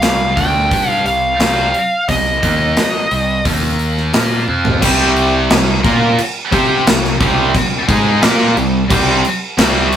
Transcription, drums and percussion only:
0.02 snare loud
0.02 open hi-hat medium
0.37 kick medium
0.37 open hi-hat soft
0.71 kick loud
0.71 open hi-hat medium
1.06 open hi-hat medium
1.40 snare loud
1.40 open hi-hat medium
1.74 open hi-hat medium
2.09 kick medium
2.09 open hi-hat medium
2.43 kick medium
2.43 open hi-hat medium
2.77 snare loud
2.77 open hi-hat medium
3.11 open hi-hat soft
3.45 kick loud
3.45 open hi-hat medium
3.79 open hi-hat soft
3.98 snare soft
4.14 snare loud
4.14 open hi-hat medium
4.48 high tom medium
4.65 floor tom medium
4.82 kick medium
4.82 crash loud
4.82 crash medium
5.16 crash medium
5.50 snare loud
5.50 crash medium
5.84 kick loud
5.84 crash medium
6.18 crash medium
6.52 kick loud
6.52 crash medium
6.87 snare loud
6.87 crash medium
7.04 snare soft
7.21 kick loud
7.21 crash medium
7.55 kick loud
7.55 crash medium
7.89 kick loud
7.89 crash medium
8.22 snare loud
8.22 crash medium
8.57 crash medium
8.90 kick loud
8.90 crash medium
9.25 crash medium
9.58 snare loud
9.58 crash medium
9.92 crash medium

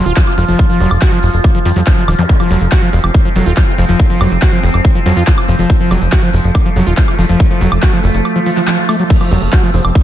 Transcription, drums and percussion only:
0.06 closed hi-hat medium
0.06 shaker medium
0.16 kick loud
0.16 clap loud
0.16 closed hi-hat medium
0.16 shaker soft
0.27 high woodblock soft
0.38 open hi-hat loud
0.38 shaker medium
0.48 closed hi-hat medium
0.48 shaker medium
0.59 kick loud
0.59 closed hi-hat medium
0.59 shaker soft
0.80 open hi-hat loud
0.80 shaker loud
0.91 closed hi-hat medium
0.91 high woodblock medium
0.91 shaker medium
1.02 kick loud
1.02 clap loud
1.02 closed hi-hat medium
1.02 shaker soft
1.23 open hi-hat loud
1.23 shaker medium
1.34 closed hi-hat medium
1.34 shaker medium
1.44 kick loud
1.44 closed hi-hat medium
1.44 high woodblock soft
1.44 shaker soft
1.65 open hi-hat loud
1.65 shaker medium
1.76 closed hi-hat medium
1.76 shaker medium
1.87 kick loud
1.87 clap loud
1.87 closed hi-hat medium
1.87 shaker soft
2.08 open hi-hat loud
2.08 high woodblock medium
2.08 shaker medium
2.18 closed hi-hat medium
2.18 shaker medium
2.29 kick loud
2.29 closed hi-hat medium
2.29 shaker soft
2.40 high woodblock soft
2.50 open hi-hat loud
2.50 shaker loud
2.61 closed hi-hat medium
2.61 shaker soft
2.72 kick loud
2.72 clap loud
2.72 closed hi-hat medium
2.72 shaker soft
2.93 open hi-hat loud
2.93 shaker medium
3.04 closed hi-hat medium
3.04 high woodblock medium
3.04 shaker soft
3.14 kick loud
3.14 closed hi-hat medium
3.14 shaker soft
3.35 open hi-hat loud
3.35 shaker medium
3.46 closed hi-hat medium
3.46 shaker medium
3.57 kick loud
3.57 clap loud
3.57 closed hi-hat medium
3.57 high woodblock soft
3.57 shaker soft
3.78 open hi-hat loud
3.78 shaker medium
3.89 closed hi-hat medium
3.89 shaker medium
3.99 kick loud
3.99 closed hi-hat medium
3.99 shaker soft
4.21 open hi-hat loud
4.21 high woodblock medium
4.21 shaker medium
4.31 closed hi-hat medium
4.31 shaker medium
4.42 kick loud
4.42 clap loud
4.42 closed hi-hat medium
4.42 shaker soft
4.63 open hi-hat loud
4.63 shaker medium
4.74 closed hi-hat medium
4.74 high woodblock soft
4.74 shaker soft
4.85 kick loud
4.85 closed hi-hat medium
4.85 shaker soft
5.06 open hi-hat loud
5.06 shaker loud
5.16 closed hi-hat medium
5.16 shaker medium
5.27 kick loud
5.27 clap loud
5.27 closed hi-hat medium
5.27 shaker soft
5.38 high woodblock medium
5.48 open hi-hat loud
5.48 shaker medium
5.59 closed hi-hat medium
5.59 shaker medium
5.70 kick loud
5.70 closed hi-hat medium
5.70 shaker soft
5.91 open hi-hat loud
5.91 high woodblock soft
5.91 shaker medium
6.02 closed hi-hat medium
6.02 shaker medium
6.12 kick loud
6.12 clap loud
6.12 closed hi-hat medium
6.12 shaker soft
6.34 open hi-hat loud
6.34 shaker loud
6.44 closed hi-hat medium
6.44 shaker soft
6.55 kick loud
6.55 closed hi-hat medium
6.55 high woodblock medium
6.55 shaker soft
6.76 open hi-hat loud
6.76 shaker medium
6.87 closed hi-hat medium
6.87 shaker medium
6.97 kick loud
6.97 clap loud
6.97 closed hi-hat medium
6.97 shaker soft
7.08 high woodblock soft
7.19 open hi-hat loud
7.19 shaker medium
7.29 closed hi-hat medium
7.29 shaker medium
7.40 kick loud
7.40 closed hi-hat medium
7.40 shaker soft
7.61 open hi-hat loud
7.61 shaker medium
7.72 closed hi-hat medium
7.72 high woodblock medium
7.72 shaker medium
7.82 kick loud
7.82 clap loud
7.82 closed hi-hat medium
7.82 shaker soft
8.04 open hi-hat loud
8.04 shaker medium
8.14 closed hi-hat medium
8.14 shaker medium
8.25 closed hi-hat medium
8.25 high woodblock soft
8.25 shaker soft
8.46 open hi-hat loud
8.46 shaker medium
8.57 clap soft
8.57 closed hi-hat medium
8.57 shaker soft
8.67 clap loud
8.67 closed hi-hat medium
8.67 shaker soft
8.89 open hi-hat loud
8.89 high woodblock medium
8.89 shaker loud
9.00 closed hi-hat medium
9.00 shaker soft
9.10 kick loud
9.10 closed hi-hat medium
9.10 crash medium
9.10 shaker soft
9.21 high woodblock soft
9.31 open hi-hat loud
9.31 shaker loud
9.42 closed hi-hat medium
9.42 shaker medium
9.53 kick loud
9.53 clap loud
9.53 closed hi-hat medium
9.53 shaker soft
9.74 open hi-hat loud
9.74 shaker medium
9.85 closed hi-hat medium
9.85 high woodblock medium
9.85 shaker medium
9.95 kick loud
9.95 closed hi-hat medium
9.95 shaker soft

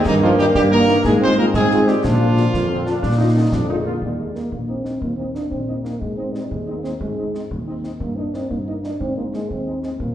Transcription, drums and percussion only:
0.05 concert bass drum medium
0.05 snare medium
0.05 crash soft
0.39 snare medium
0.55 concert bass drum medium
0.55 snare medium
0.88 snare medium
1.04 concert bass drum medium
1.04 snare medium
1.54 concert bass drum medium
1.54 snare medium
1.71 snare medium
1.88 snare medium
2.04 concert bass drum medium
2.04 snare medium
2.04 crash soft
2.37 snare medium
2.54 concert bass drum medium
2.54 snare medium
2.87 snare medium
3.03 concert bass drum medium
3.03 snare medium
3.52 concert bass drum medium
3.52 snare medium
4.02 concert bass drum medium
4.35 snare soft
4.52 concert bass drum soft
4.85 snare soft
5.02 concert bass drum medium
5.35 snare soft
5.51 concert bass drum soft
5.85 snare soft
6.02 concert bass drum medium
6.35 snare soft
6.51 concert bass drum medium
6.84 snare soft
7.01 concert bass drum medium
7.35 snare soft
7.51 concert bass drum medium
7.84 snare soft
8.00 concert bass drum medium
8.34 snare soft
8.51 concert bass drum medium
8.84 snare soft
9.01 concert bass drum medium
9.34 snare soft
9.50 concert bass drum medium
9.83 snare soft
10.00 concert bass drum medium

